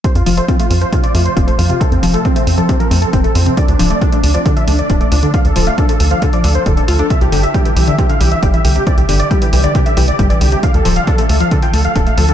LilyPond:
<<
  \new Staff \with { instrumentName = "Supersaw synth" } { \time 4/4 \key f \major \tempo 4 = 136 c''16 f'16 f'16 c''16 f'16 f'16 f'16 c''16 f'16 d''16 f'16 c''16 f'16 c''16 f'16 f'16 | a'16 c'16 c'16 a'16 c'16 c'16 c'16 a'16 c'16 bes'16 c'16 a'16 c'16 a'16 c'16 c'16 | d''16 d'16 d'16 d''16 d'16 d'16 d'16 d''16 d'16 e''16 d'16 d''16 d'16 d''16 d'16 d'16 | f''16 a'16 a'16 f''16 a'16 a'16 a'16 f''16 a'16 d''16 a'16 c''16 a'16 a'16 a'16 a'16 |
e''16 g'16 g'16 e''16 g'16 g'16 g'16 e''16 g'16 f''16 g'16 e''16 g'16 e''16 g'16 g'16 | d''16 g'16 g'16 d''16 g'16 g'16 g'16 d''16 g'16 e''16 g'16 d''16 g'16 d''16 g'16 g'16 | f''16 a'16 a'16 f''16 a'16 a'16 a'16 f''16 a'16 g''16 a'16 f''16 a'16 f''16 a'16 a'16 | }
  \new Staff \with { instrumentName = "Synth pluck" } { \clef bass \time 4/4 \key f \major c16 r16 f16 a16 c'16 a16 r16 f16 c16 f16 a16 r16 c'16 a16 f16 c16 | c16 r16 f16 a16 c'16 a16 r16 f16 c16 f16 a16 r16 c'16 a16 f16 c16 | d16 r16 f16 a16 d'16 a16 r16 f16 d16 f16 a16 r16 d'16 a16 f16 d16 | d16 r16 f16 a16 d'16 a16 r16 f16 d16 f16 d'16 r16 d16 d16 f'16 d'16 |
c16 r16 d16 r16 g16 e16 e16 d16 c16 d16 e16 r16 g16 e16 d16 c16 | c16 r16 d16 r16 g16 e16 e16 d16 c16 d16 e16 r16 g16 e16 d16 c16 | d16 r16 f16 r16 d'16 a16 a16 f16 d16 f16 a16 r16 d'16 a16 f16 d16 | }
  \new Staff \with { instrumentName = "Analog synth bass" } { \clef bass \time 4/4 \key f \major r16 f,16 f,,16 r8. f,16 r8. f,16 r16 f,,16 r16 f,16 r16 | r16 f,16 f,,16 r8. f,16 r8. f,16 r16 f,,16 r16 f,16 r16 | r16 d,16 d,,16 r8. d,16 r8. d,16 r16 d,,16 r16 d,16 r16 | r16 d,16 d,,16 r8. d,16 r8. d,16 r16 d,,16 r16 d,16 r16 |
r16 c,16 g,,16 r8. c,16 r8. c,16 r16 g,,16 r16 c,16 r16 | r16 c,16 g,,16 r8. c,16 r8. c,16 r16 g,,16 r16 c,16 r16 | r16 d,16 d,,16 r8. d,16 r8. d,16 r16 d,,16 r16 d,16 r16 | }
  \new DrumStaff \with { instrumentName = "Drums" } \drummode { \time 4/4 <hh bd>16 hh16 hho16 hh16 <hh bd>16 hh16 hho16 hh16 <hh bd>16 hh16 hho16 hh16 <hh bd>16 hh16 hho16 hh16 | <hh bd>16 hh16 hho16 hh16 <hh bd>16 hh16 hho16 hh16 <hh bd>16 hh16 hho16 hh16 <hh bd>16 hh16 hho16 hh16 | <hh bd>16 hh16 hho8 <hh bd>16 hh16 hho16 hh16 <hh bd>16 hh16 hho16 hh16 <hh bd>16 hh16 hho16 hh16 | <hh bd>16 hh16 hho16 hh16 <hh bd>16 hh16 hho16 hh16 <hh bd>16 hh16 hho8 <hh bd>16 hh16 hho8 |
<hh bd>16 hh16 hho16 hh16 <hh bd>16 hh16 hho16 hh16 <hh bd>16 hh16 hho16 hh16 <hh bd>16 hh16 hho16 hh16 | <hh bd>16 hh16 hho16 hh16 <hh bd>16 hh16 hho16 hh16 <hh bd>16 hh16 hho16 hh16 <hh bd>16 hh16 hho16 hh16 | <hh bd>16 hh16 hho16 hh16 <hh bd>16 hh16 hho16 hh16 <hh bd>16 hh16 hho8 <hh bd>16 hh16 hho16 hh16 | }
>>